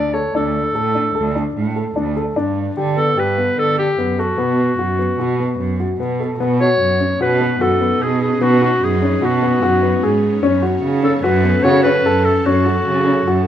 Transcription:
0.00 0.31 D2 medium
0.00 0.12 D4 medium
0.00 0.15 D5 medium
0.14 0.32 A4 medium
0.14 0.34 C#5 medium
0.35 0.71 D2 medium
0.35 0.70 D4 medium
0.35 1.53 A4 medium
0.75 1.12 A2 medium
0.75 0.93 A4 medium
0.95 1.13 D4 medium
1.15 1.52 D2 medium
1.15 1.33 A4 medium
1.35 1.70 D4 medium
1.56 1.92 A2 medium
1.76 1.94 A4 medium
1.96 2.33 D2 medium
1.96 2.14 D4 medium
2.17 2.34 A4 medium
2.36 2.74 G2 medium
2.36 2.71 D4 medium
2.77 3.14 D3 medium
2.77 2.95 G4 medium
2.97 3.14 B3 medium
2.97 3.21 A4 medium
3.17 3.54 G2 medium
3.17 3.35 G4 medium
3.17 3.60 B4 medium
3.38 3.73 B3 medium
3.59 3.95 D3 medium
3.59 3.78 A4 medium
3.78 3.96 G4 medium
3.78 4.21 G4 medium
3.99 4.35 F#2 medium
3.99 4.16 B3 medium
4.19 6.01 F#4 medium
4.19 4.36 A4 medium
4.38 4.75 B2 medium
4.38 4.73 B3 medium
4.78 5.15 F#2 medium
4.78 4.96 F#4 medium
4.99 5.17 B3 medium
5.19 5.56 B2 medium
5.19 5.37 F#4 medium
5.40 5.75 B3 medium
5.59 5.96 F#2 medium
5.80 5.97 F#4 medium
6.00 6.37 B2 medium
6.00 6.18 B3 medium
6.20 6.37 A4 medium
6.40 6.76 B2 medium
6.40 6.58 B3 medium
6.40 10.40 B3 medium
6.40 13.47 C#4 medium
6.40 10.40 D#4 medium
6.61 6.96 F#4 medium
6.61 7.17 C#5 loud
6.81 7.17 F#2 medium
7.01 7.18 C#4 medium
7.21 7.58 B2 medium
7.21 7.38 F#4 medium
7.21 7.63 B4 medium
7.41 7.59 B3 medium
7.61 7.98 F#2 medium
7.61 7.79 F#4 medium
7.61 8.04 A4 medium
7.81 7.99 B3 medium
8.01 8.37 B2 medium
8.01 8.36 G#4 medium
8.01 8.22 G#4 medium
8.22 8.44 G#4 medium
8.41 8.78 B2 medium
8.41 8.59 B3 medium
8.41 8.62 F#4 medium
8.62 8.97 F#4 medium
8.62 8.85 F#4 medium
8.84 9.20 F#2 medium
8.84 9.26 G#4 medium
9.02 9.20 C#4 medium
9.22 9.59 B2 medium
9.22 9.40 F#4 medium
9.22 10.25 F#4 medium
9.43 9.60 B3 medium
9.63 10.00 F#2 medium
9.63 9.80 F#4 medium
9.83 10.01 B3 medium
10.03 10.40 G#2 medium
10.03 10.38 G#4 medium
10.43 10.80 F#2 medium
10.43 13.47 F#3 medium
10.43 10.61 C#4 medium
10.43 13.47 A4 medium
10.62 10.98 F#4 medium
10.84 11.20 C#3 medium
11.03 11.21 C#4 medium
11.03 11.13 A4 medium
11.23 11.61 F#2 loud
11.23 11.42 F#4 medium
11.23 11.65 B4 medium
11.44 11.62 B3 medium
11.63 12.01 C#3 medium
11.63 11.82 F#4 medium
11.63 11.83 C#5 loud
11.83 12.03 C#4 medium
11.83 12.26 B4 loud
12.05 12.42 F#2 medium
12.05 12.41 A4 medium
12.25 12.48 A4 medium
12.46 12.82 F#2 medium
12.46 12.63 C#4 medium
12.46 13.47 F#4 medium
12.66 13.01 F#4 medium
12.87 13.23 C#3 medium
13.06 13.24 C#4 medium
13.27 13.47 F#2 medium
13.27 13.45 F#4 medium

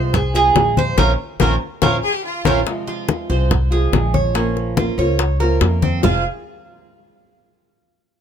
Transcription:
0.00 0.52 C2 medium
0.00 0.13 F3 medium
0.00 0.13 G#3 medium
0.00 0.13 C4 medium
0.00 0.12 F4 medium
0.00 0.15 C5 medium
0.00 0.33 C5 medium
0.14 0.35 G#4 medium
0.14 muted steel-string acoustic guitar stroke medium
0.14 high bongo medium
0.14 high conga soft
0.14 low conga medium
0.34 0.54 F3 medium
0.34 0.55 G#3 medium
0.34 0.55 C4 medium
0.34 0.54 F4 medium
0.34 0.76 G#4 medium
0.34 0.74 G#4 medium
0.34 high bongo soft
0.34 high conga soft
0.55 0.95 A#1 medium
0.55 0.97 F3 soft
0.55 0.97 G#3 soft
0.55 0.96 C4 soft
0.55 0.96 F4 medium
0.55 high bongo medium
0.55 low bongo medium
0.55 high conga medium
0.77 0.97 C5 medium
0.77 high conga medium
0.97 1.13 A#1 medium
0.97 1.11 C4 medium
0.97 1.11 C#4 medium
0.97 1.12 C#4 medium
0.97 1.11 F4 medium
0.97 1.12 A#4 medium
0.97 1.11 A#4 medium
0.97 1.12 C5 medium
0.97 1.12 C#5 medium
0.97 high bongo medium
0.97 high conga medium
1.39 1.56 A#1 medium
1.39 1.53 C4 medium
1.39 1.54 C#4 medium
1.39 1.53 F4 medium
1.39 1.54 F4 medium
1.39 1.54 A#4 loud
1.39 1.54 A#4 medium
1.39 1.54 C5 medium
1.39 1.55 C#5 medium
1.39 high bongo loud
1.39 high conga loud
1.82 1.98 A#1 medium
1.82 1.96 C4 medium
1.82 1.95 C#4 medium
1.82 1.96 C#4 medium
1.82 1.96 F4 medium
1.82 1.96 A#4 medium
1.82 1.96 C5 medium
1.82 1.96 C#5 medium
1.82 high bongo loud
1.82 high conga medium
2.03 2.13 G#4 medium
2.14 2.24 G4 medium
2.25 2.64 F4 medium
2.45 2.61 A#1 medium
2.45 2.59 C4 medium
2.45 2.59 C#4 loud
2.45 2.59 C#4 medium
2.45 2.59 F4 loud
2.45 2.59 F4 medium
2.45 2.59 A#4 medium
2.45 2.60 A#4 medium
2.45 2.60 C5 medium
2.45 2.60 C#5 medium
2.45 high bongo loud
2.45 high conga loud
2.66 3.07 C3 medium
2.66 3.07 F3 medium
2.66 3.08 G#3 medium
2.66 3.08 C4 medium
2.66 3.09 F4 medium
2.66 high bongo medium
2.66 high conga soft
2.87 3.28 F4 medium
2.87 high bongo soft
2.87 high conga soft
3.08 3.29 F3 soft
3.08 3.29 G#3 soft
3.08 3.29 C4 medium
3.08 3.29 F4 medium
3.08 high bongo medium
3.08 high conga medium
3.30 3.89 C2 loud
3.30 3.50 F3 medium
3.30 3.50 G#3 medium
3.30 3.50 C4 medium
3.30 3.50 F4 medium
3.30 3.71 C5 medium
3.30 high bongo soft
3.30 high conga soft
3.51 muted steel-string acoustic guitar stroke medium
3.51 high bongo medium
3.51 high conga soft
3.51 low conga medium
3.71 3.91 F3 medium
3.71 3.92 G#3 medium
3.71 3.92 C4 medium
3.71 3.91 F4 medium
3.71 4.13 G#4 medium
3.71 high bongo soft
3.71 high conga soft
3.93 4.92 A#1 loud
3.93 4.33 F3 soft
3.93 4.34 G#3 medium
3.93 4.35 C4 medium
3.93 4.35 F4 medium
3.93 high bongo medium
3.93 low bongo medium
3.93 high conga medium
4.14 4.34 C#5 medium
4.14 high conga medium
4.34 4.76 F3 medium
4.34 4.76 A#3 medium
4.34 4.76 C#4 medium
4.34 4.77 C#4 medium
4.34 4.77 F4 medium
4.34 4.77 C5 medium
4.34 high bongo medium
4.34 high conga soft
4.57 high bongo soft
4.57 high conga soft
4.77 4.97 A#3 soft
4.77 4.98 C#4 medium
4.77 4.98 F4 medium
4.77 4.97 F4 medium
4.77 4.97 C5 medium
4.77 high bongo medium
4.77 high conga loud
4.98 5.57 C#2 loud
4.98 5.18 A#3 medium
4.98 5.19 C#4 medium
4.98 5.19 F4 medium
4.98 5.18 C5 medium
4.98 5.39 C#5 medium
4.98 high conga soft
5.19 muted steel-string acoustic guitar stroke medium
5.19 high bongo medium
5.19 high conga soft
5.40 5.60 A#3 medium
5.40 5.61 C#4 medium
5.40 5.61 F4 medium
5.40 5.81 A#4 medium
5.40 5.61 C5 medium
5.40 high bongo soft
5.40 high conga soft
5.61 5.98 F2 medium
5.61 6.03 A#3 soft
5.61 6.03 C#4 soft
5.61 6.03 F4 medium
5.61 6.04 C5 soft
5.61 high bongo medium
5.61 low bongo medium
5.61 high conga soft
5.82 6.03 C4 medium
5.82 high bongo soft
5.82 high conga medium
6.03 6.23 F1 medium
6.03 6.20 F2 medium
6.03 6.20 C3 medium
6.03 6.21 F3 medium
6.03 6.21 G#3 medium
6.03 6.21 C4 medium
6.03 6.23 F4 medium
6.03 6.21 F4 medium
6.03 6.23 G#4 medium
6.03 6.23 C5 medium
6.03 6.23 F5 medium
6.03 low bongo medium
6.03 low conga medium

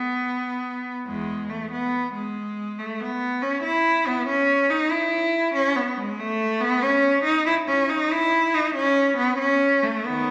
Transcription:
0.00 0.94 B3 loud
1.06 1.47 E2 medium
1.06 1.47 G#3 loud
1.50 1.71 A3 loud
1.72 2.14 B3 loud
2.14 2.78 G#3 loud
2.79 3.00 A3 medium
3.01 3.43 B3 loud
3.42 3.63 C#4 loud
3.64 4.05 E4 loud
4.07 4.28 B3 loud
4.29 4.70 C#4 loud
4.70 4.91 D#4 loud
4.91 5.55 E4 loud
5.55 5.76 C#4 loud
5.76 5.97 B3 loud
5.97 6.18 G#3 loud
6.19 6.61 A3 loud
6.60 6.82 B3 loud
6.82 7.25 C#4 loud
7.24 7.46 D#4 loud
7.46 7.54 E4 loud
7.68 7.89 C#4 loud
7.89 8.11 D#4 loud
8.11 8.54 E4 loud
8.54 8.76 D#4 loud
8.76 9.18 C#4 loud
9.18 9.39 B3 loud
9.39 9.82 C#4 loud
9.83 10.05 A3 loud
10.05 10.31 D#3 medium
10.05 10.31 B3 loud

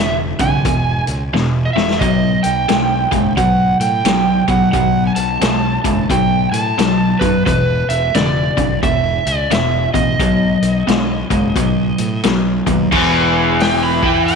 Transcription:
0.00 0.32 E1 medium
0.00 0.35 E2 medium
0.00 0.36 C#3 medium
0.00 0.16 E5 medium
0.39 0.60 B1 medium
0.39 0.62 E2 medium
0.39 0.63 C#3 medium
0.39 1.04 G#5 medium
0.39 kick medium
0.39 closed hi-hat medium
0.65 1.00 E1 medium
0.65 1.28 E2 medium
0.65 1.28 B2 medium
0.65 kick loud
0.65 closed hi-hat medium
1.07 1.29 C#2 medium
1.07 closed hi-hat medium
1.32 1.68 E1 medium
1.32 1.72 E2 medium
1.32 1.72 B2 medium
1.32 snare medium
1.65 1.73 D#5 medium
1.73 2.01 E1 medium
1.73 1.98 E2 medium
1.73 1.99 B2 medium
1.73 1.99 E5 medium
1.77 snare medium
1.90 snare medium
1.99 2.36 B1 medium
1.99 2.64 B2 medium
1.99 2.64 F#3 medium
1.99 2.40 D#5 medium
1.99 kick loud
1.99 closed hi-hat medium
2.43 2.65 B1 medium
2.43 3.36 G5 medium
2.43 closed hi-hat medium
2.69 3.05 B1 medium
2.69 3.07 B2 medium
2.69 3.08 G#3 medium
2.69 snare loud
2.69 closed hi-hat medium
3.11 3.33 F#1 medium
3.11 3.34 B2 medium
3.11 3.35 G#3 medium
3.11 kick medium
3.11 closed hi-hat medium
3.37 3.73 B1 medium
3.37 4.00 B2 medium
3.37 4.00 F#3 medium
3.37 3.77 F#5 medium
3.37 kick loud
3.37 closed hi-hat medium
3.80 4.01 A2 medium
3.80 4.45 G5 medium
3.80 closed hi-hat soft
4.05 4.40 B1 medium
4.05 4.44 B2 medium
4.05 4.44 F#3 medium
4.05 snare loud
4.05 closed hi-hat medium
4.48 4.69 B1 medium
4.48 4.71 B2 medium
4.48 4.71 F#3 medium
4.48 4.71 F#5 medium
4.48 kick medium
4.48 closed hi-hat medium
4.72 5.09 B1 medium
4.72 5.37 B2 medium
4.72 5.37 F#3 medium
4.72 5.07 F#5 loud
4.72 kick loud
4.72 closed hi-hat medium
5.07 5.15 G#5 medium
5.16 5.37 B1 medium
5.16 6.11 A5 loud
5.16 closed hi-hat medium
5.41 5.77 B1 medium
5.41 5.80 B2 medium
5.41 5.81 G#3 medium
5.41 snare loud
5.41 closed hi-hat medium
5.84 6.05 F#1 medium
5.84 6.07 B2 medium
5.84 6.08 G#3 medium
5.84 kick medium
5.84 closed hi-hat medium
6.10 6.46 B1 medium
6.10 6.73 B2 medium
6.10 6.73 F#3 medium
6.10 6.52 G5 medium
6.10 kick loud
6.10 closed hi-hat medium
6.52 6.73 A2 medium
6.52 7.23 A5 loud
6.52 closed hi-hat medium
6.78 7.14 B1 medium
6.78 7.17 B2 medium
6.78 7.17 F#3 medium
6.78 snare loud
6.78 closed hi-hat medium
7.19 7.42 F#2 medium
7.19 7.44 B2 medium
7.19 7.44 F#3 medium
7.19 7.45 B4 medium
7.19 kick medium
7.19 closed hi-hat medium
7.46 7.82 E1 loud
7.46 8.09 E2 medium
7.46 8.10 B2 medium
7.46 7.86 B4 medium
7.46 kick loud
7.46 closed hi-hat medium
7.89 8.10 E1 medium
7.89 8.15 E5 medium
7.89 closed hi-hat medium
8.15 8.50 E1 medium
8.15 8.53 E2 medium
8.15 8.53 C#3 medium
8.15 8.79 D5 medium
8.15 snare loud
8.15 closed hi-hat medium
8.57 8.79 B1 medium
8.57 8.80 E2 medium
8.57 8.80 C#3 medium
8.57 kick medium
8.57 closed hi-hat medium
8.83 9.18 E1 loud
8.83 9.46 E2 medium
8.83 9.46 B2 medium
8.83 9.27 E5 medium
8.83 kick loud
8.83 closed hi-hat medium
9.25 9.46 C#2 medium
9.25 9.53 D5 medium
9.25 closed hi-hat soft
9.50 9.86 E1 medium
9.50 9.89 E2 medium
9.50 9.90 B2 medium
9.50 9.93 E5 medium
9.50 snare loud
9.50 closed hi-hat medium
9.94 10.15 A1 medium
9.94 10.17 E2 medium
9.94 10.17 B2 medium
9.94 12.20 D#5 medium
9.94 kick medium
9.94 closed hi-hat medium
10.19 10.55 B1 medium
10.19 10.83 B2 medium
10.19 10.83 F#3 medium
10.19 kick loud
10.19 closed hi-hat medium
10.62 10.83 B1 medium
10.62 closed hi-hat medium
10.87 11.23 B1 medium
10.87 11.26 B2 medium
10.87 11.26 G#3 medium
10.87 snare loud
10.87 closed hi-hat medium
11.30 11.51 F#1 medium
11.30 11.53 B2 medium
11.30 11.53 G#3 medium
11.30 kick medium
11.30 closed hi-hat medium
11.56 11.91 B1 medium
11.56 12.19 B2 medium
11.56 12.19 F#3 medium
11.56 kick loud
11.56 closed hi-hat medium
11.98 12.20 A2 medium
11.98 closed hi-hat medium
12.23 12.60 B1 medium
12.23 12.63 B2 medium
12.23 12.63 F#3 medium
12.23 snare loud
12.23 closed hi-hat medium
12.66 12.88 D#2 medium
12.66 12.89 B2 medium
12.66 12.90 F#3 medium
12.66 kick medium
12.66 closed hi-hat medium
12.91 13.99 E1 medium
12.91 14.01 E2 medium
12.91 14.02 E3 loud
12.91 kick loud
12.91 crash loud
13.60 13.83 G5 loud
13.60 snare medium
13.60 open hi-hat medium
13.83 14.05 B5 medium
14.03 14.35 E2 medium
14.03 14.35 E3 medium
14.03 14.35 E4 medium
14.03 14.25 G5 medium
14.03 kick loud
14.26 14.35 G5 loud
14.26 open hi-hat soft

